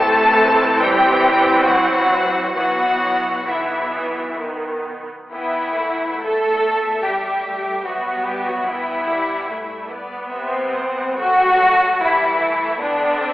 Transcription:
0.00 2.51 A1 medium
0.00 2.51 E3 medium
0.00 0.80 A3 loud
0.00 2.52 C4 medium
0.00 0.82 A4 loud
0.00 0.80 A5 loud
0.81 1.67 G3 medium
0.81 1.66 G4 loud
0.81 1.67 G5 loud
1.66 2.54 F#3 medium
1.66 2.55 F#4 medium
1.66 2.54 F#5 loud
2.55 5.09 B1 medium
2.55 3.46 E3 medium
2.55 3.46 F#3 medium
2.55 3.46 B3 medium
2.55 3.47 F#4 medium
2.55 3.46 F#5 medium
3.47 4.37 E3 medium
3.47 4.40 E3 medium
3.47 4.37 B3 medium
3.47 4.40 E4 medium
3.47 4.40 E5 medium
4.39 5.09 D#3 medium
4.39 5.08 B3 soft
5.30 7.81 E2 soft
5.30 6.18 E3 medium
5.30 5.73 B3 medium
5.30 6.19 E4 medium
5.30 5.73 G5 medium
5.75 7.04 A3 medium
5.75 6.21 F#5 medium
6.22 7.04 A3 medium
6.22 7.04 A4 loud
6.22 7.83 E5 medium
7.03 7.43 G3 soft
7.03 7.86 G3 medium
7.03 7.85 G4 medium
7.43 7.85 A3 soft
7.84 10.25 G2 soft
7.84 8.27 F#3 medium
7.84 8.67 B3 medium
7.84 8.28 F#4 medium
7.84 8.67 E5 soft
8.27 8.48 G3 medium
8.27 8.48 G4 medium
8.46 8.69 F#3 medium
8.46 8.68 F#4 medium
8.68 9.89 E3 soft
8.68 9.09 B3 medium
8.68 9.88 E4 medium
8.68 9.10 G5 medium
9.10 9.50 G3 medium
9.10 9.50 F#5 soft
9.49 9.89 A3 soft
9.49 9.89 E5 soft
9.89 11.18 B3 medium
9.89 10.29 D5 medium
10.29 12.76 C2 soft
10.29 11.14 C3 medium
10.29 11.14 C4 medium
10.29 10.72 E5 medium
10.73 11.18 F#5 soft
11.18 12.02 F#3 medium
11.18 12.02 A3 medium
11.18 12.02 F#4 loud
11.18 11.60 G5 medium
11.61 12.01 A5 medium
12.01 12.81 E3 medium
12.01 12.41 G3 medium
12.01 12.81 E4 medium
12.01 12.79 A5 medium
12.41 12.79 A3 medium
12.80 13.33 E2 soft
12.80 13.33 D3 medium
12.80 13.20 B3 medium
12.80 13.33 D4 medium
12.80 13.33 G5 medium
13.19 13.33 C4 medium

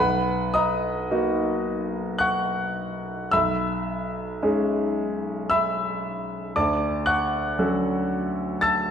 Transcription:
0.00 1.06 B1 medium
0.00 0.49 B4 medium
0.00 0.49 F#5 medium
0.00 0.53 B5 medium
0.54 2.16 D#5 medium
0.54 2.17 A#5 medium
0.54 2.20 D#6 medium
1.11 3.27 A#3 soft
1.11 3.28 D#4 soft
1.11 3.28 F#4 medium
2.19 3.27 F#5 medium
2.19 3.27 C#6 medium
2.19 3.30 F#6 medium
3.31 4.38 B1 medium
3.31 5.46 E5 medium
3.31 5.47 B5 medium
3.31 5.48 E6 medium
4.43 6.53 G#3 soft
4.43 6.53 C#4 soft
4.43 6.53 D#4 soft
4.43 6.53 G#4 soft
5.50 6.52 E5 medium
5.50 6.52 B5 medium
5.50 6.56 E6 medium
6.56 7.55 D2 medium
6.56 7.04 D5 medium
6.56 7.04 A5 medium
6.56 7.07 D6 medium
7.06 8.57 F#5 medium
7.06 8.57 C#6 medium
7.06 8.61 F#6 medium
7.59 8.91 F#3 soft
7.59 8.91 C#4 soft
7.59 8.91 F#4 soft
7.59 8.91 A4 medium
8.61 8.91 A5 medium
8.61 8.91 E6 medium
8.61 8.91 A6 medium

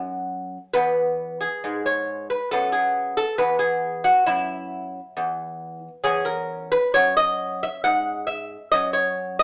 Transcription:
0.00 0.57 F#2 medium
0.00 0.70 B3 soft
0.00 0.47 D#4 medium
0.73 1.46 E2 medium
0.73 2.49 B3 soft
0.73 1.38 B4 medium
1.41 1.84 G#4 medium
1.64 2.35 G#2 medium
1.86 2.29 C#5 medium
2.30 2.51 B4 medium
2.51 3.23 F#2 medium
2.51 3.37 B3 soft
2.51 2.72 A4 medium
2.72 3.16 G#4 medium
3.17 3.38 A4 medium
3.38 4.10 E2 medium
3.38 6.01 B3 medium
3.38 3.58 B4 loud
3.59 4.04 G#4 medium
4.04 4.26 F#4 medium
4.26 4.99 F#2 medium
4.26 5.78 E4 medium
5.17 5.87 E2 medium
6.04 6.76 E2 medium
6.04 8.68 C#4 medium
6.04 6.27 G#4 medium
6.25 6.69 A#4 medium
6.72 6.94 B4 loud
6.94 7.67 F#2 medium
6.94 7.16 C#5 loud
7.17 7.60 D#5 loud
7.63 7.83 E5 loud
7.84 8.56 G#2 medium
7.84 8.26 F#5 loud
8.27 8.71 E5 medium
8.72 9.43 F#2 medium
8.72 9.43 C#4 soft
8.72 8.93 D#5 loud
8.93 9.37 C#5 medium
9.39 9.43 D#5 loud

